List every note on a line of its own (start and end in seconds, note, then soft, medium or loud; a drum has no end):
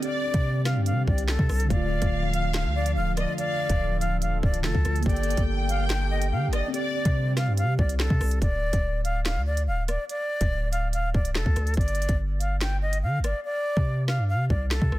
0.00 5.02 D3 medium
0.00 1.69 G3 medium
0.00 1.64 C4 medium
0.00 1.69 C4 medium
0.00 1.69 G4 medium
0.00 1.67 G4 medium
0.00 0.62 D5 loud
0.00 0.42 D5 loud
0.00 closed hi-hat medium
0.08 1.70 D5 medium
0.34 0.78 C3 loud
0.34 kick loud
0.34 closed hi-hat medium
0.65 0.81 F5 medium
0.65 cross-stick loud
0.65 snare medium
0.65 closed hi-hat medium
0.76 0.93 G2 loud
0.86 1.02 F5 medium
0.86 closed hi-hat medium
0.92 1.07 C3 loud
1.07 1.38 C2 loud
1.07 1.23 D5 medium
1.07 kick medium
1.18 closed hi-hat medium
1.28 1.68 A4 medium
1.28 snare loud
1.28 clap loud
1.39 1.49 C3 loud
1.39 kick medium
1.49 1.69 C2 loud
1.49 cross-stick loud
1.49 open hi-hat medium
1.60 closed hi-hat medium
1.65 4.57 D3 medium
1.70 2.01 D1 loud
1.70 5.03 F3 medium
1.70 4.60 A3 medium
1.70 5.03 F4 medium
1.70 6.70 A4 medium
1.70 2.29 D5 loud
1.70 3.13 F5 loud
1.70 kick loud
1.70 closed hi-hat medium
1.76 4.63 F4 medium
2.02 2.66 D1 loud
2.02 kick loud
2.02 closed hi-hat medium
2.33 2.49 F5 medium
2.33 closed hi-hat medium
2.54 2.70 F5 medium
2.54 snare loud
2.54 clap loud
2.54 closed hi-hat medium
2.65 2.98 D2 loud
2.75 2.91 D5 medium
2.86 closed hi-hat medium
2.96 3.26 D1 loud
2.96 3.12 F5 medium
3.17 3.33 D5 medium
3.17 3.37 D#5 medium
3.17 cross-stick loud
3.17 closed hi-hat medium
3.38 3.97 D5 loud
3.38 3.78 F5 loud
3.38 closed hi-hat medium
3.70 4.24 D1 loud
3.70 kick loud
3.70 closed hi-hat medium
4.01 4.17 F5 medium
4.01 closed hi-hat medium
4.22 4.34 D#1 loud
4.22 4.38 F5 medium
4.22 closed hi-hat medium
4.33 4.43 D1 loud
4.43 4.66 C1 loud
4.43 4.59 D5 medium
4.43 kick medium
4.54 closed hi-hat medium
4.61 4.74 F1 loud
4.61 5.05 D3 medium
4.61 5.06 A3 soft
4.61 5.03 A4 medium
4.61 snare loud
4.61 clap loud
4.67 5.07 F4 medium
4.75 4.85 D2 loud
4.75 kick medium
4.85 5.05 D2 loud
4.85 cross-stick loud
4.85 closed hi-hat medium
4.96 closed hi-hat soft
5.00 6.68 A#3 medium
5.00 closed hi-hat soft
5.06 5.36 G1 loud
5.06 8.38 D3 medium
5.06 6.72 A#3 medium
5.06 6.70 G4 medium
5.06 8.38 G4 medium
5.06 5.42 D5 loud
5.06 6.49 G5 loud
5.06 kick loud
5.06 closed hi-hat medium
5.12 6.73 A4 medium
5.16 closed hi-hat medium
5.23 closed hi-hat medium
5.30 closed hi-hat medium
5.37 6.33 G1 loud
5.37 kick loud
5.37 closed hi-hat medium
5.69 5.85 F5 medium
5.69 closed hi-hat medium
5.90 6.06 G5 medium
5.90 snare loud
5.90 clap loud
5.90 closed hi-hat medium
6.11 6.27 D#5 medium
6.22 closed hi-hat medium
6.32 6.49 D3 loud
6.32 6.48 F5 medium
6.48 6.63 G1 loud
6.53 6.69 D5 medium
6.53 6.73 D#5 medium
6.53 cross-stick loud
6.53 closed hi-hat medium
6.68 8.35 C4 medium
6.74 8.40 G3 medium
6.74 8.40 C4 medium
6.74 8.38 G4 medium
6.74 7.33 D5 loud
6.74 7.14 D5 loud
6.74 closed hi-hat medium
6.79 8.41 D5 medium
7.05 7.49 C3 loud
7.05 kick loud
7.05 closed hi-hat medium
7.37 7.53 F5 medium
7.37 cross-stick loud
7.37 snare medium
7.37 closed hi-hat medium
7.47 7.65 G2 loud
7.57 7.74 F5 medium
7.57 closed hi-hat medium
7.63 7.78 C3 loud
7.78 8.09 C2 loud
7.78 7.95 D5 medium
7.78 kick loud
7.89 closed hi-hat medium
8.00 8.39 A4 medium
8.00 snare loud
8.00 clap loud
8.10 8.20 C3 loud
8.10 kick medium
8.21 8.41 C2 loud
8.21 cross-stick loud
8.21 open hi-hat medium
8.31 closed hi-hat medium
8.42 8.72 D1 loud
8.42 9.01 D5 loud
8.42 kick loud
8.42 closed hi-hat medium
8.73 9.38 D1 loud
8.73 kick loud
8.73 closed hi-hat medium
9.04 9.21 F5 medium
9.04 closed hi-hat medium
9.25 9.42 F5 medium
9.25 snare loud
9.25 clap medium
9.25 closed hi-hat medium
9.36 9.69 D2 loud
9.47 9.63 D5 medium
9.57 closed hi-hat medium
9.68 9.97 D1 loud
9.68 9.84 F5 medium
9.88 10.04 D5 medium
9.88 cross-stick loud
9.88 closed hi-hat medium
10.09 10.69 D5 loud
10.09 closed hi-hat medium
10.41 10.95 D1 loud
10.41 kick loud
10.41 closed hi-hat medium
10.72 10.88 F5 medium
10.72 closed hi-hat medium
10.93 11.05 D#1 loud
10.93 11.10 F5 medium
10.93 closed hi-hat medium
11.04 11.14 D1 loud
11.14 11.37 C1 loud
11.14 11.30 D5 medium
11.14 kick medium
11.25 closed hi-hat medium
11.35 11.45 F1 loud
11.35 11.75 A4 medium
11.35 snare loud
11.35 clap medium
11.46 11.56 D2 loud
11.46 kick medium
11.56 11.76 D2 loud
11.56 cross-stick loud
11.56 closed hi-hat medium
11.67 closed hi-hat soft
11.74 12.08 G1 loud
11.74 12.15 D5 loud
11.74 kick loud
11.74 closed hi-hat soft
11.81 closed hi-hat medium
11.88 closed hi-hat medium
11.95 closed hi-hat medium
12.02 closed hi-hat medium
12.09 13.05 G1 loud
12.09 kick loud
12.09 closed hi-hat medium
12.40 12.56 F5 medium
12.40 closed hi-hat medium
12.61 12.77 G5 medium
12.61 snare loud
12.61 clap loud
12.61 closed hi-hat medium
12.82 12.98 D#5 medium
12.93 closed hi-hat medium
13.03 13.21 D3 loud
13.03 13.19 F5 medium
13.19 13.34 G1 loud
13.24 13.40 D5 medium
13.24 cross-stick loud
13.24 closed hi-hat medium
13.45 14.04 D5 loud
13.77 14.20 C3 loud
13.77 kick loud
14.08 14.24 F5 medium
14.08 cross-stick medium
14.08 snare medium
14.19 14.36 G2 loud
14.29 14.45 F5 medium
14.34 14.49 C3 loud
14.50 14.80 C2 loud
14.50 14.66 D5 medium
14.50 kick medium
14.71 14.99 A4 medium
14.71 snare loud
14.71 clap medium
14.82 14.91 C3 loud
14.82 kick medium
14.92 14.99 C2 loud
14.92 cross-stick loud